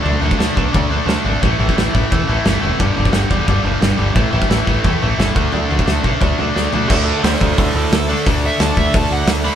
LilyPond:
<<
  \new Staff \with { instrumentName = "Lead electric guitar" } { \time 4/4 \key d \major \tempo 4 = 175 r1 | r1 | r1 | r1 |
r1 | <a' d''>8 <a' d''>8 <a' c''>8 <a' c''>8 <e' a'>8 <e' a'>8 a'4 | r8 e''8 a''8 e''8 a''8 fis''8 r8 b''8 | }
  \new Staff \with { instrumentName = "Distorted electric guitar" } { \clef bass \time 4/4 \key d \major <d a d'>8 <d a d'>8 <d a d'>8 <d a d'>8 <d a d'>8 <d a d'>8 <d a d'>8 <d a d'>8 | <a, e a>8 <a, e a>8 <a, e a>8 <a, e a>8 <a, e a>8 <a, e a>8 <a, e a>8 <a, e a>8 | <g, d g>8 <g, d g>8 <g, d g>8 <g, d g>8 <g, d g>8 <g, d g>8 <g, d g>8 <g, d g>8 | <a, e a>8 <a, e a>8 <a, e a>8 <a, e a>8 <a, e a>8 <a, e a>8 <a, e a>8 <d a d'>8 |
<d a d'>8 <d a d'>8 <d a d'>8 <d a d'>8 <d a d'>8 <d a d'>8 <d a d'>8 <d a d'>8 | <d a d'>2.~ <d a d'>8 <d a d'>8 | <d a d'>2.~ <d a d'>8 <d a d'>8 | }
  \new Staff \with { instrumentName = "Picked electric bass" } { \clef bass \time 4/4 \key d \major d,8 d,8 d,8 b,,8 d,8 d,8 d,8 gis,,8 | a,,8 a,,8 a,,8 a,,8 e,8 a,,8 g,,8 e,,8 | g,,8 g,,8 g,,8 e,,8 g,,8 g,,8 g,,8 g,,8 | a,,8 a,,8 a,,8 a,,8 e,8 a,,8 g,,8 d,8 |
d,8 d,8 d,8 b,,8 d,8 d,8 d,8 d,8 | d,4 d,8 d,8 d,8 d,8 d,4 | d,4 d,8 d,8 d,8 d,8 d,4 | }
  \new DrumStaff \with { instrumentName = "Drums" } \drummode { \time 4/4 tomfh8 tomfh16 bd16 <sn tomfh>8 <bd tomfh>8 <bd tomfh>8 tomfh8 <sn tomfh>8 tomfh8 | <bd tomfh>8 tomfh16 bd16 <sn tomfh>8 <bd tomfh>8 <bd tomfh>8 tomfh8 <sn tomfh>8 tomfh8 | <bd tomfh>8 tomfh16 bd16 <sn tomfh>8 <bd tomfh>8 <bd tomfh>8 tomfh8 <sn tomfh>8 tomfh8 | <bd tomfh>8 tomfh16 bd16 <sn tomfh>8 <bd tomfh>8 <bd tomfh>8 tomfh8 <sn tomfh>8 <bd tomfh>8 |
tomfh8 tomfh16 bd16 <sn tomfh>8 <bd tomfh>8 <bd tomfh>8 tomfh8 sn8 tomfh8 | <cymc bd>4 <hho sn>8 bd8 <hho bd>4 <hho sn>4 | <hho bd>4 <hho sn>8 bd8 <hho bd>4 <hho sn>4 | }
>>